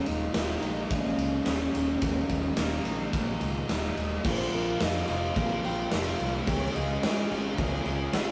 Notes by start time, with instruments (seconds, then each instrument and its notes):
Already playing: overdriven electric guitar D#2 A#2 D#3 G#3 A#3 D#4
0.06 fingered electric bass D#1, soft synth lead D#4, ride
0.32 fingered electric bass D#1, overdriven electric guitar D#3 G#3 A#3, soft synth lead F4, snare, ride
0.36 overdriven electric guitar D#4
0.60 fingered electric bass A#1, overdriven electric guitar D#3 G#3 A#3 D#4, soft synth lead D#4, ride
0.86 overdriven electric guitar D#2 A#2 D#3, soft synth lead C#4
0.91 fingered electric bass A#1, overdriven electric guitar G#3 A#3 D#4, kick, ride
1.18 fingered electric bass C#2, ride
1.45 fingered electric bass D#1, overdriven electric guitar D#3 G#3 A#3 D#4, snare, ride
1.75 fingered electric bass D#1, ride
2.01 fingered electric bass D#1, overdriven electric guitar D#2 A#2 D#3 G#3 A#3 D#4, kick, ride
2.30 fingered electric bass D#1, kick, ride
2.57 fingered electric bass D#1, overdriven electric guitar D#3 G#3 A#3, snare, ride
2.61 overdriven electric guitar D#4
2.84 fingered electric bass A#1, overdriven electric guitar D#3 G#3 A#3 D#4, ride
3.13 fingered electric bass A#1, overdriven electric guitar D#2 A#2 D#3 G#3 A#3 D#4, kick, ride
3.41 fingered electric bass C#2, ride
3.68 fingered electric bass D#1, overdriven electric guitar D#3 G#3 A#3 D#4, snare, ride
3.97 fingered electric bass D#1, ride
4.23 fingered electric bass A#1, overdriven electric guitar A#2 F3 A#3 C4 F4, soft synth lead C5, kick, crash
4.52 fingered electric bass A#1, overdriven electric guitar A#3 C4 F4, soft synth lead A#4, crash
4.78 fingered electric bass F2, overdriven electric guitar F3 A#3 C4, soft synth lead D#5, snare, crash
4.83 overdriven electric guitar F4
5.07 fingered electric bass F1, overdriven electric guitar A#3 C4 F4, crash
5.34 fingered electric bass A#1, overdriven electric guitar A#2 F3 A#3 C4 F4, soft synth lead F5, kick, crash
5.61 fingered electric bass A#1, overdriven electric guitar A#3 C4 F4, soft synth lead G5, crash
5.89 fingered electric bass F1, overdriven electric guitar F3 A#3 C4 F4, snare, crash
5.94 soft synth lead F5
6.17 fingered electric bass C2, overdriven electric guitar A#3 C4 F4, crash
6.45 fingered electric bass C#2, overdriven electric guitar C#3 G#3 C#4 F4 G#4, kick, crash
6.49 soft synth lead C#5
6.62 snare
6.72 fingered electric bass C#2, overdriven electric guitar C#4 F4 G#4, soft synth lead D#5, crash
7.00 fingered electric bass G#2, overdriven electric guitar G#3 C#4 F4 G#4, snare, crash
7.27 overdriven electric guitar C#4 F4 G#4
7.31 fingered electric bass G#1, crash
7.55 fingered electric bass C#2, overdriven electric guitar C#3 G#3 C#4 F4 G#4, kick, crash
7.85 fingered electric bass C#2, overdriven electric guitar C#4 F4 G#4, crash
8.12 fingered electric bass G#1, overdriven electric guitar G#3 C#4 F4 G#4, snare, crash